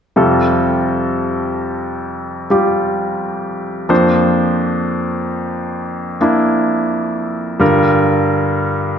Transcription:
0.16 3.86 F2 soft
0.16 3.86 C3 soft
0.16 2.46 G3 soft
0.16 2.46 F4 soft
0.16 2.47 A4 soft
2.50 3.90 G3 soft
2.50 3.90 F4 soft
2.50 3.90 G4 soft
3.89 7.57 F2 soft
3.89 7.57 F3 soft
3.89 6.17 A#3 soft
3.89 6.17 D4 soft
3.89 6.18 C5 soft
6.21 7.61 A#3 soft
6.21 7.61 D4 soft
6.21 7.61 E4 soft
7.60 8.99 G2 soft
7.60 8.99 D3 soft
7.60 8.99 G3 soft
7.60 8.99 F4 soft
7.60 8.99 A#4 medium

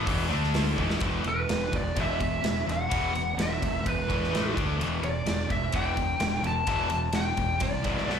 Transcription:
0.05 0.28 E1 medium
0.05 0.29 E2 medium
0.05 0.28 B2 medium
0.05 0.28 E3 loud
0.05 kick loud
0.05 open hi-hat medium
0.28 0.74 D2 medium
0.28 0.75 D3 medium
0.28 0.76 A3 loud
0.28 0.76 D4 loud
0.44 snare soft
0.54 snare loud
0.54 open hi-hat medium
0.76 0.99 E1 medium
0.76 0.99 E2 loud
0.76 0.99 B2 loud
0.76 1.00 E3 loud
0.76 kick medium
0.90 snare medium
1.00 1.24 E1 medium
1.00 1.22 E2 medium
1.00 1.23 B2 medium
1.00 1.23 E3 medium
1.00 kick loud
1.00 ride medium
1.23 1.48 E1 medium
1.23 1.45 E2 medium
1.23 1.46 B2 medium
1.23 ride medium
1.29 1.75 B4 medium
1.48 1.71 E1 medium
1.48 1.69 E2 medium
1.48 1.70 B2 medium
1.48 snare loud
1.48 ride medium
1.72 1.95 E1 medium
1.72 1.93 E2 medium
1.72 1.93 B2 medium
1.72 kick medium
1.72 ride medium
1.76 1.96 D5 medium
1.96 2.41 E1 medium
1.96 2.18 E2 medium
1.96 2.18 B2 medium
1.96 2.19 E3 medium
1.96 kick loud
1.96 ride medium
2.01 2.65 E5 medium
2.19 2.40 E2 medium
2.19 2.41 B2 medium
2.19 kick medium
2.19 ride medium
2.42 2.66 E1 medium
2.42 2.63 E2 medium
2.42 2.64 B2 medium
2.42 snare loud
2.42 ride medium
2.67 2.89 E1 medium
2.67 2.87 E2 medium
2.67 2.88 B2 medium
2.67 snare soft
2.67 ride medium
2.72 3.42 F#5 medium
2.88 3.36 E1 medium
2.88 3.11 E2 medium
2.88 3.12 B2 medium
2.88 3.12 E3 medium
2.88 ride loud
2.92 kick loud
3.13 3.35 E2 medium
3.13 3.34 B2 medium
3.13 ride medium
3.37 3.59 E1 medium
3.37 3.58 E2 medium
3.37 3.58 B2 medium
3.37 snare medium
3.37 ride medium
3.41 3.83 E5 medium
3.60 3.84 E1 medium
3.60 3.81 E2 medium
3.60 3.82 B2 medium
3.60 kick medium
3.60 ride medium
3.84 4.30 E1 medium
3.84 4.05 E2 medium
3.84 4.05 B2 medium
3.84 kick loud
3.84 ride medium
3.88 4.53 B4 medium
4.06 4.29 E2 medium
4.06 4.29 B2 loud
4.06 4.30 E3 medium
4.06 kick medium
4.06 ride medium
4.24 snare soft
4.30 4.54 A1 medium
4.30 4.53 A2 medium
4.30 4.53 E3 loud
4.30 4.53 A3 medium
4.35 snare loud
4.35 ride medium
4.54 4.78 D2 medium
4.54 4.77 D3 medium
4.54 4.77 A3 medium
4.54 4.77 D4 medium
4.54 kick loud
4.54 ride medium
4.78 5.01 E1 medium
4.78 5.00 E2 medium
4.78 5.00 B2 medium
4.78 5.01 E3 medium
4.78 ride medium
5.02 5.25 E1 medium
5.02 5.24 E2 medium
5.02 5.24 B2 medium
5.02 5.52 D5 medium
5.02 ride medium
5.26 5.48 E1 medium
5.26 5.47 E2 medium
5.26 5.47 B2 medium
5.26 snare loud
5.26 ride medium
5.48 5.72 E1 medium
5.48 5.70 E2 medium
5.48 5.70 B2 medium
5.48 kick medium
5.48 ride medium
5.52 5.73 E5 medium
5.72 6.18 E1 medium
5.72 5.94 E2 medium
5.72 5.95 B2 medium
5.72 5.95 E3 medium
5.72 6.47 G5 medium
5.72 kick loud
5.72 ride medium
5.96 6.17 E2 medium
5.96 6.17 B2 medium
5.96 kick medium
5.96 ride medium
6.19 6.42 E1 medium
6.19 6.41 E2 medium
6.19 6.42 B2 medium
6.19 snare loud
6.19 ride medium
6.42 6.65 E1 medium
6.42 6.65 E2 medium
6.42 6.65 B2 medium
6.42 ride medium
6.47 7.15 A5 loud
6.67 7.12 E1 medium
6.67 6.89 E2 medium
6.67 6.89 B2 medium
6.67 6.89 E3 medium
6.67 kick loud
6.67 ride medium
6.90 7.11 E2 medium
6.90 7.11 B2 medium
6.90 ride medium
7.13 7.36 E1 medium
7.13 7.35 E2 medium
7.13 7.35 B2 medium
7.13 7.63 G5 medium
7.13 snare loud
7.13 ride medium
7.37 7.60 E1 medium
7.37 7.58 E2 medium
7.37 7.59 B2 medium
7.37 kick medium
7.37 ride medium
7.60 8.05 C2 medium
7.60 7.82 E2 medium
7.60 7.82 B2 medium
7.60 8.20 D5 medium
7.60 kick loud
7.60 ride loud
7.84 8.06 E2 medium
7.84 8.07 B2 medium
7.84 8.07 E3 medium
7.84 kick medium
7.84 ride medium
7.98 snare soft
8.07 8.20 B1 medium
8.07 8.20 B2 medium
8.07 8.20 F#3 medium
8.07 8.20 B3 medium
8.07 snare medium

